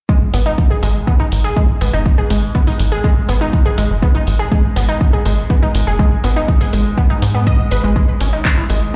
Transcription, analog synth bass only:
0, 0, Header, 1, 2, 480
1, 0, Start_track
1, 0, Key_signature, 5, "minor"
1, 0, Tempo, 491803
1, 88, Time_signature, 4, 2, 24, 8
1, 8743, End_track
2, 0, Start_track
2, 0, Title_t, "Analog synth bass"
2, 0, Program_c, 0, 38
2, 328, Note_on_c, 0, 32, 92
2, 496, Note_off_c, 0, 32, 0
2, 807, Note_on_c, 0, 32, 97
2, 975, Note_off_c, 0, 32, 0
2, 1288, Note_on_c, 0, 32, 90
2, 1456, Note_off_c, 0, 32, 0
2, 1768, Note_on_c, 0, 32, 104
2, 1852, Note_off_c, 0, 32, 0
2, 1888, Note_on_c, 0, 30, 84
2, 2056, Note_off_c, 0, 30, 0
2, 2248, Note_on_c, 0, 32, 97
2, 2416, Note_off_c, 0, 32, 0
2, 2728, Note_on_c, 0, 32, 99
2, 2896, Note_off_c, 0, 32, 0
2, 3209, Note_on_c, 0, 32, 89
2, 3376, Note_off_c, 0, 32, 0
2, 3689, Note_on_c, 0, 32, 101
2, 3772, Note_off_c, 0, 32, 0
2, 3809, Note_on_c, 0, 30, 80
2, 3976, Note_off_c, 0, 30, 0
2, 4168, Note_on_c, 0, 32, 97
2, 4336, Note_off_c, 0, 32, 0
2, 4648, Note_on_c, 0, 32, 96
2, 4816, Note_off_c, 0, 32, 0
2, 5129, Note_on_c, 0, 32, 89
2, 5296, Note_off_c, 0, 32, 0
2, 5608, Note_on_c, 0, 32, 100
2, 5692, Note_off_c, 0, 32, 0
2, 5729, Note_on_c, 0, 30, 81
2, 5896, Note_off_c, 0, 30, 0
2, 6089, Note_on_c, 0, 32, 93
2, 6256, Note_off_c, 0, 32, 0
2, 6569, Note_on_c, 0, 32, 98
2, 6736, Note_off_c, 0, 32, 0
2, 7048, Note_on_c, 0, 44, 94
2, 7216, Note_off_c, 0, 44, 0
2, 7528, Note_on_c, 0, 32, 77
2, 7612, Note_off_c, 0, 32, 0
2, 7649, Note_on_c, 0, 32, 91
2, 7816, Note_off_c, 0, 32, 0
2, 8009, Note_on_c, 0, 32, 92
2, 8176, Note_off_c, 0, 32, 0
2, 8488, Note_on_c, 0, 32, 95
2, 8656, Note_off_c, 0, 32, 0
2, 8743, End_track
0, 0, End_of_file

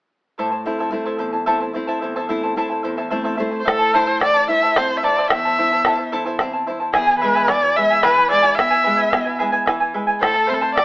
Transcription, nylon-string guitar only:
0, 0, Header, 1, 2, 480
1, 0, Start_track
1, 0, Tempo, 545703
1, 343, Time_signature, 6, 3, 24, 8
1, 9543, End_track
2, 0, Start_track
2, 0, Title_t, "Nylon-string guitar"
2, 0, Program_c, 0, 24
2, 341, Note_on_c, 0, 45, 51
2, 576, Note_on_c, 0, 57, 45
2, 578, Note_on_c, 0, 60, 39
2, 583, Note_on_c, 0, 64, 44
2, 798, Note_off_c, 0, 57, 0
2, 798, Note_off_c, 0, 60, 0
2, 806, Note_off_c, 0, 64, 0
2, 808, Note_off_c, 0, 45, 0
2, 808, Note_on_c, 0, 57, 43
2, 812, Note_on_c, 0, 60, 41
2, 816, Note_on_c, 0, 64, 47
2, 1046, Note_on_c, 0, 40, 56
2, 1198, Note_off_c, 0, 57, 0
2, 1198, Note_off_c, 0, 60, 0
2, 1203, Note_off_c, 0, 64, 0
2, 1292, Note_on_c, 0, 57, 43
2, 1298, Note_on_c, 0, 60, 38
2, 1304, Note_on_c, 0, 64, 45
2, 1520, Note_off_c, 0, 40, 0
2, 1529, Note_off_c, 0, 57, 0
2, 1532, Note_off_c, 0, 60, 0
2, 1532, Note_off_c, 0, 64, 0
2, 1537, Note_on_c, 0, 57, 41
2, 1545, Note_on_c, 0, 60, 42
2, 1548, Note_on_c, 0, 64, 48
2, 1791, Note_on_c, 0, 40, 56
2, 1925, Note_off_c, 0, 57, 0
2, 1927, Note_off_c, 0, 60, 0
2, 1927, Note_off_c, 0, 64, 0
2, 2013, Note_on_c, 0, 57, 46
2, 2023, Note_on_c, 0, 60, 44
2, 2025, Note_on_c, 0, 64, 54
2, 2243, Note_off_c, 0, 57, 0
2, 2245, Note_off_c, 0, 60, 0
2, 2248, Note_off_c, 0, 64, 0
2, 2253, Note_off_c, 0, 40, 0
2, 2253, Note_on_c, 0, 57, 40
2, 2257, Note_on_c, 0, 60, 40
2, 2259, Note_on_c, 0, 64, 47
2, 2505, Note_on_c, 0, 40, 59
2, 2641, Note_off_c, 0, 57, 0
2, 2642, Note_off_c, 0, 60, 0
2, 2644, Note_off_c, 0, 64, 0
2, 2735, Note_on_c, 0, 57, 49
2, 2742, Note_on_c, 0, 60, 43
2, 2742, Note_on_c, 0, 64, 49
2, 2744, Note_on_c, 0, 76, 63
2, 2964, Note_off_c, 0, 76, 0
2, 2970, Note_off_c, 0, 40, 0
2, 2976, Note_off_c, 0, 60, 0
2, 2978, Note_off_c, 0, 57, 0
2, 2978, Note_off_c, 0, 64, 0
2, 2987, Note_on_c, 0, 57, 43
2, 2987, Note_on_c, 0, 60, 39
2, 2991, Note_on_c, 0, 64, 48
2, 2991, Note_on_c, 0, 72, 61
2, 3177, Note_off_c, 0, 60, 0
2, 3178, Note_off_c, 0, 57, 0
2, 3178, Note_off_c, 0, 64, 0
2, 3208, Note_off_c, 0, 72, 0
2, 3227, Note_on_c, 0, 45, 52
2, 3476, Note_on_c, 0, 64, 59
2, 3702, Note_off_c, 0, 64, 0
2, 3706, Note_on_c, 0, 52, 45
2, 3937, Note_off_c, 0, 52, 0
2, 3946, Note_on_c, 0, 64, 52
2, 4177, Note_off_c, 0, 64, 0
2, 4207, Note_on_c, 0, 60, 53
2, 4428, Note_off_c, 0, 60, 0
2, 4428, Note_on_c, 0, 64, 48
2, 4629, Note_off_c, 0, 45, 0
2, 4658, Note_off_c, 0, 64, 0
2, 4683, Note_on_c, 0, 40, 61
2, 4920, Note_on_c, 0, 64, 58
2, 5144, Note_off_c, 0, 64, 0
2, 5161, Note_on_c, 0, 52, 46
2, 5385, Note_off_c, 0, 52, 0
2, 5399, Note_on_c, 0, 64, 55
2, 5623, Note_off_c, 0, 64, 0
2, 5638, Note_on_c, 0, 60, 51
2, 5863, Note_off_c, 0, 60, 0
2, 5891, Note_on_c, 0, 64, 52
2, 6077, Note_off_c, 0, 40, 0
2, 6109, Note_off_c, 0, 64, 0
2, 6119, Note_on_c, 0, 40, 61
2, 6360, Note_on_c, 0, 56, 58
2, 6584, Note_off_c, 0, 56, 0
2, 6604, Note_on_c, 0, 47, 48
2, 6826, Note_off_c, 0, 47, 0
2, 6840, Note_on_c, 0, 56, 51
2, 7064, Note_off_c, 0, 56, 0
2, 7076, Note_on_c, 0, 52, 54
2, 7302, Note_off_c, 0, 52, 0
2, 7316, Note_on_c, 0, 56, 52
2, 7515, Note_off_c, 0, 40, 0
2, 7542, Note_off_c, 0, 56, 0
2, 7551, Note_on_c, 0, 47, 57
2, 7795, Note_on_c, 0, 56, 56
2, 8022, Note_off_c, 0, 56, 0
2, 8024, Note_off_c, 0, 47, 0
2, 8034, Note_on_c, 0, 47, 45
2, 8261, Note_off_c, 0, 47, 0
2, 8283, Note_on_c, 0, 56, 52
2, 8506, Note_off_c, 0, 56, 0
2, 8516, Note_on_c, 0, 52, 50
2, 8742, Note_off_c, 0, 52, 0
2, 8744, Note_on_c, 0, 56, 48
2, 8976, Note_off_c, 0, 56, 0
2, 8984, Note_on_c, 0, 45, 60
2, 9236, Note_on_c, 0, 60, 57
2, 9462, Note_off_c, 0, 60, 0
2, 9481, Note_on_c, 0, 52, 49
2, 9543, Note_off_c, 0, 45, 0
2, 9543, Note_off_c, 0, 52, 0
2, 9543, End_track
0, 0, End_of_file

